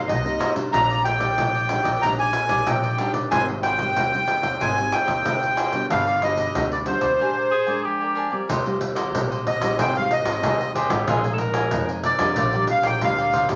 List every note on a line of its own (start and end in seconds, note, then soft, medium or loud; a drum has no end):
0.00 0.18 G3 medium
0.00 0.18 A#3 medium
0.00 0.18 D#4 medium
0.00 0.23 A#4 medium
0.00 0.22 C5 medium
0.00 0.22 D#5 medium
0.08 0.36 C2 medium
0.08 0.70 G2 medium
0.08 0.53 D#5 medium
0.08 pandeiro medium
0.24 0.52 G3 medium
0.24 0.52 A#3 medium
0.24 0.52 D#4 medium
0.24 0.38 A#4 soft
0.24 0.39 C5 soft
0.24 0.39 D#5 soft
0.24 pandeiro soft
0.39 0.54 D#4 medium
0.39 0.55 A#4 medium
0.39 0.54 C5 medium
0.39 0.52 D#5 medium
0.39 pandeiro medium
0.54 0.99 G3 medium
0.54 1.00 D4 medium
0.54 1.00 D#4 medium
0.54 0.71 A#4 soft
0.54 0.71 C5 soft
0.54 0.70 D#5 soft
0.54 pandeiro medium
0.72 1.28 A#1 loud
0.72 1.35 A#2 medium
0.72 0.87 D4 medium
0.72 0.88 G4 medium
0.72 0.88 D5 medium
0.72 0.88 D#5 medium
0.72 1.03 A#5 loud
0.72 pandeiro medium
0.89 1.03 G4 soft
0.89 1.04 D5 medium
0.89 1.04 D#5 soft
0.89 pandeiro soft
1.04 1.19 D4 soft
1.04 1.19 G4 soft
1.04 1.17 D5 medium
1.04 1.18 D#5 soft
1.04 2.05 G5 loud
1.04 pandeiro medium
1.18 1.64 G3 medium
1.18 1.64 D#4 medium
1.18 1.52 G4 soft
1.18 1.51 D5 medium
1.18 1.52 D#5 medium
1.18 pandeiro medium
1.37 1.79 A#1 medium
1.37 1.99 A#2 medium
1.37 pandeiro medium
1.53 1.67 G4 soft
1.53 1.67 D5 soft
1.53 1.67 D#5 soft
1.53 pandeiro soft
1.68 1.89 G3 medium
1.68 1.89 D4 medium
1.68 1.89 D#4 medium
1.68 muted cavaquinho stroke soft
1.68 pandeiro medium
1.83 1.99 A#1 medium
1.83 2.00 G4 medium
1.83 1.99 D5 medium
1.83 2.00 D#5 medium
1.83 pandeiro medium
2.01 2.30 A#1 medium
2.01 2.64 A#2 medium
2.01 2.33 G3 medium
2.01 2.16 D4 medium
2.01 2.33 D4 medium
2.01 2.33 D#4 medium
2.01 2.16 G4 medium
2.01 2.17 D5 medium
2.01 2.17 D#5 medium
2.01 2.17 A#5 loud
2.01 pandeiro medium
2.18 2.33 G4 soft
2.18 2.33 D5 soft
2.18 2.33 D#5 soft
2.18 2.69 G#5 loud
2.18 pandeiro soft
2.33 muted cavaquinho stroke soft
2.33 pandeiro medium
2.49 2.64 A#1 medium
2.49 2.94 G3 medium
2.49 2.94 D#4 medium
2.49 2.82 G4 medium
2.49 2.81 D5 medium
2.49 2.81 D#5 medium
2.49 pandeiro medium
2.66 2.94 A#1 medium
2.66 3.29 A#2 medium
2.66 3.12 G5 medium
2.66 pandeiro medium
2.83 2.98 G4 soft
2.83 2.98 D5 soft
2.83 2.99 D#5 soft
2.83 pandeiro soft
2.98 3.26 G3 medium
2.98 3.14 D4 medium
2.98 3.27 D4 medium
2.98 3.27 D#4 medium
2.98 3.14 G4 medium
2.98 3.12 D5 medium
2.98 3.13 D#5 medium
2.98 pandeiro medium
3.13 3.30 G4 soft
3.13 3.29 D5 soft
3.13 3.30 D#5 soft
3.13 pandeiro medium
3.31 3.87 G#1 loud
3.31 3.94 G#2 medium
3.31 3.63 G3 medium
3.31 3.63 C4 medium
3.31 3.63 D#4 medium
3.31 3.46 G#4 medium
3.31 3.47 C5 medium
3.31 3.47 D#5 medium
3.31 3.47 G5 medium
3.31 3.46 G#5 loud
3.31 pandeiro medium
3.48 3.63 C5 soft
3.48 3.64 D#5 soft
3.48 3.63 G5 soft
3.48 pandeiro soft
3.63 3.79 G#4 soft
3.63 3.79 C5 soft
3.63 3.78 D#5 medium
3.63 4.64 G5 loud
3.63 3.77 G5 medium
3.63 pandeiro medium
3.78 4.07 G3 medium
3.78 4.07 C4 medium
3.78 4.07 D#4 medium
3.78 4.11 C5 medium
3.78 4.11 D#5 medium
3.78 4.10 G5 medium
3.78 pandeiro medium
3.96 4.38 D#2 medium
3.96 4.58 D#3 medium
3.96 pandeiro medium
4.13 4.73 G3 medium
4.13 4.73 C4 medium
4.13 4.73 D#4 medium
4.13 4.26 C5 soft
4.13 4.26 D#5 soft
4.13 4.26 G5 soft
4.13 pandeiro soft
4.27 muted cavaquinho stroke soft
4.27 pandeiro medium
4.43 4.58 D#2 medium
4.43 4.59 C5 medium
4.43 4.59 D#5 medium
4.43 4.59 G5 medium
4.43 pandeiro medium
4.60 4.89 G#1 medium
4.60 5.23 G#2 medium
4.60 4.75 G#4 medium
4.60 4.76 C5 medium
4.60 4.76 D#5 medium
4.60 4.75 G5 medium
4.60 4.94 G#5 medium
4.60 pandeiro medium
4.77 5.21 G3 medium
4.77 5.21 C4 medium
4.77 5.21 D#4 medium
4.77 4.91 C5 soft
4.77 4.91 D#5 soft
4.77 4.91 G5 soft
4.77 pandeiro soft
4.91 5.86 G5 loud
4.91 muted cavaquinho stroke soft
4.91 pandeiro medium
5.06 5.26 D#2 medium
5.06 5.40 C5 medium
5.06 5.39 D#5 medium
5.06 5.39 G5 medium
5.06 pandeiro medium
5.25 5.53 D2 medium
5.25 5.56 G3 medium
5.25 5.56 C4 medium
5.25 5.57 D#4 medium
5.25 pandeiro medium
5.42 5.55 C5 soft
5.42 5.56 D#5 soft
5.42 5.57 G5 soft
5.42 pandeiro soft
5.56 5.72 G#4 medium
5.56 5.72 C5 medium
5.56 5.72 D#5 medium
5.56 5.71 G5 medium
5.56 pandeiro medium
5.72 6.20 G3 medium
5.72 6.21 B3 medium
5.72 6.21 D4 medium
5.72 5.89 C5 soft
5.72 5.88 D#5 soft
5.72 5.88 G5 medium
5.72 pandeiro medium
5.90 6.46 G1 loud
5.90 6.52 G2 medium
5.90 6.05 D4 medium
5.90 6.06 G4 medium
5.90 6.06 B4 medium
5.90 6.05 D5 medium
5.90 6.21 F5 loud
5.90 pandeiro medium
6.06 6.22 G4 soft
6.06 6.22 B4 soft
6.06 6.21 D5 soft
6.06 pandeiro soft
6.21 6.49 G3 soft
6.21 6.50 B3 medium
6.21 6.37 D4 medium
6.21 6.50 D4 medium
6.21 6.38 G4 medium
6.21 6.37 B4 soft
6.21 6.38 D5 medium
6.21 6.68 D#5 medium
6.21 pandeiro medium
6.37 6.70 G4 medium
6.37 6.70 B4 medium
6.37 pandeiro medium
6.55 6.96 D2 medium
6.55 7.17 D3 medium
6.55 6.74 G3 medium
6.55 6.74 B3 medium
6.55 6.74 D4 medium
6.55 pandeiro medium
6.72 6.85 G4 soft
6.72 6.86 B4 soft
6.72 6.86 D5 soft
6.72 6.79 D5 medium
6.72 pandeiro soft
6.86 7.06 G3 medium
6.86 7.06 B3 medium
6.86 7.07 D4 medium
6.86 7.81 C5 medium
6.86 muted cavaquinho stroke soft
6.86 pandeiro medium
7.01 7.17 D2 medium
7.01 7.18 G4 soft
7.01 7.18 B4 medium
7.01 7.17 D5 medium
7.01 pandeiro medium
7.19 7.81 A#2 soft
7.19 7.50 G#3 medium
7.19 7.34 D4 medium
7.19 7.50 D4 soft
7.19 7.51 G4 medium
7.19 7.35 A#4 medium
7.19 7.35 D5 medium
7.19 7.35 G#5 medium
7.36 7.50 A#4 soft
7.36 7.51 D5 soft
7.36 7.51 G#5 medium
7.51 7.82 G#4 loud
7.51 muted cavaquinho stroke soft
7.67 8.27 G#3 medium
7.67 8.28 D4 medium
7.67 8.00 A#4 soft
7.67 7.99 D5 medium
7.67 7.99 G#5 medium
7.84 8.46 F3 medium
7.84 8.45 G4 medium
8.00 8.15 A#4 soft
8.00 8.15 D5 soft
8.00 8.16 G#5 soft
8.15 8.31 D4 medium
8.15 8.31 A#4 medium
8.15 8.30 D5 medium
8.15 8.28 G#5 medium
8.30 8.65 G3 medium
8.30 8.65 C4 medium
8.30 8.66 F4 medium
8.30 8.47 A#4 soft
8.30 8.47 D5 soft
8.30 8.46 G#5 medium
8.49 9.14 D#2 medium
8.49 9.11 D#3 medium
8.49 8.64 D#4 medium
8.49 8.64 G4 medium
8.49 8.65 C5 medium
8.49 8.64 D#5 medium
8.49 pandeiro medium
8.65 9.09 G3 medium
8.65 9.09 C4 medium
8.65 9.10 F4 medium
8.65 8.79 G4 soft
8.65 8.80 C5 soft
8.65 8.80 D#5 medium
8.65 pandeiro soft
8.80 muted cavaquinho stroke soft
8.80 pandeiro medium
8.95 9.29 G4 medium
8.95 9.28 C5 medium
8.95 9.28 D#5 medium
8.95 pandeiro medium
9.14 9.55 A#1 medium
9.14 9.76 A#2 medium
9.14 9.58 G3 medium
9.14 9.58 C4 medium
9.14 9.58 F4 medium
9.14 pandeiro medium
9.30 9.61 G4 soft
9.30 9.60 C5 soft
9.30 9.59 D#5 soft
9.30 pandeiro soft
9.47 9.77 D#5 medium
9.47 pandeiro medium
9.60 9.75 A#1 medium
9.60 9.89 G3 medium
9.60 9.89 C4 medium
9.60 9.90 D#4 medium
9.60 9.77 G4 medium
9.60 9.77 C5 medium
9.60 9.76 D#5 medium
9.60 pandeiro medium
9.78 10.06 G#1 medium
9.78 10.41 G#2 medium
9.78 9.93 G#4 medium
9.78 9.93 C5 medium
9.78 9.94 D#5 medium
9.78 9.93 G5 medium
9.78 9.96 G5 loud
9.78 pandeiro medium
9.94 10.39 G3 medium
9.94 10.40 C4 medium
9.94 10.40 D#4 medium
9.94 10.10 C5 soft
9.94 10.10 D#5 soft
9.94 10.12 F5 medium
9.94 10.10 G5 soft
9.94 pandeiro soft
10.11 10.72 D#5 medium
10.11 muted cavaquinho stroke soft
10.11 pandeiro medium
10.25 10.40 G#1 medium
10.25 10.42 C5 medium
10.25 10.42 D#5 medium
10.25 10.41 G5 medium
10.25 pandeiro medium
10.43 10.84 D#2 medium
10.43 11.05 D#3 medium
10.43 10.87 G3 medium
10.43 10.88 C4 medium
10.43 10.88 D#4 medium
10.43 10.58 G#4 medium
10.43 10.59 C5 soft
10.43 10.59 D#5 medium
10.43 10.59 G5 medium
10.43 pandeiro medium
10.60 10.75 C5 soft
10.60 10.75 D#5 soft
10.60 10.75 G5 soft
10.60 pandeiro soft
10.75 11.09 G4 medium
10.75 10.90 G#4 medium
10.75 10.91 C5 medium
10.75 10.91 D#5 medium
10.75 10.90 G5 medium
10.75 pandeiro medium
10.90 11.04 A1 loud
10.90 11.19 G#3 medium
10.90 11.19 D#4 medium
10.90 11.19 F4 medium
10.90 11.07 C5 soft
10.90 11.07 D#5 soft
10.90 11.06 G5 soft
10.90 pandeiro medium
11.07 11.74 A#1 medium
11.07 11.70 A#2 medium
11.07 11.23 F4 medium
11.07 11.33 G#4 loud
11.07 11.24 A#4 medium
11.07 11.24 D#5 medium
11.07 11.24 G#5 medium
11.07 pandeiro medium
11.24 11.68 G#3 medium
11.24 11.68 D#4 medium
11.24 11.68 F4 medium
11.24 11.39 A#4 soft
11.24 11.40 D#5 soft
11.24 11.40 G#5 medium
11.24 pandeiro soft
11.33 11.40 A4 medium
11.38 11.88 A#4 loud
11.38 muted cavaquinho stroke soft
11.38 pandeiro medium
11.54 11.88 A#4 soft
11.54 11.87 D#5 medium
11.54 11.87 G#5 medium
11.54 pandeiro medium
11.71 12.14 F2 medium
11.71 12.34 F3 medium
11.71 12.16 G#3 medium
11.71 12.16 D#4 medium
11.71 12.16 F4 medium
11.71 pandeiro medium
11.89 12.20 A#4 soft
11.89 12.19 D#5 soft
11.89 12.18 G#5 soft
11.89 pandeiro soft
12.04 12.66 D5 medium
12.04 pandeiro medium
12.19 12.34 F2 medium
12.19 12.47 G3 medium
12.19 12.48 D4 medium
12.19 12.48 F4 medium
12.19 12.35 A#4 medium
12.19 12.36 D#5 medium
12.19 12.35 G#5 medium
12.19 pandeiro medium
12.36 12.65 A#1 medium
12.36 12.99 A#2 medium
12.36 12.52 F4 medium
12.36 12.52 A#4 medium
12.36 12.52 D5 medium
12.36 12.53 G5 medium
12.36 pandeiro medium
12.53 12.97 G3 medium
12.53 12.97 D4 medium
12.53 12.97 F4 medium
12.53 12.67 A#4 soft
12.53 12.67 D5 soft
12.53 12.68 G5 medium
12.53 pandeiro soft
12.67 12.85 F5 medium
12.67 muted cavaquinho stroke soft
12.67 pandeiro medium
12.83 12.99 A#1 medium
12.83 13.00 A#4 medium
12.83 13.00 D5 medium
12.83 12.99 G5 medium
12.83 13.01 G5 loud
12.83 pandeiro medium
13.01 13.44 D2 medium
13.01 13.55 A#2 medium
13.01 13.45 G3 medium
13.01 13.45 D4 medium
13.01 13.17 F4 medium
13.01 13.45 F4 medium
13.01 13.17 A#4 medium
13.01 13.17 D5 medium
13.01 13.48 F5 medium
13.01 13.17 G5 medium
13.01 pandeiro medium
13.18 13.33 A#4 soft
13.18 13.34 D5 soft
13.18 13.33 G5 medium
13.18 pandeiro soft
13.33 13.48 F4 medium
13.33 13.49 A#4 medium
13.33 13.48 D5 medium
13.33 13.47 G5 medium
13.33 pandeiro medium
13.48 13.55 A#1 loud
13.48 13.55 A#3 medium
13.48 13.55 D#4 medium
13.48 13.55 G4 medium
13.48 13.55 A#4 soft
13.48 13.55 D5 soft
13.48 13.55 G5 medium
13.48 pandeiro medium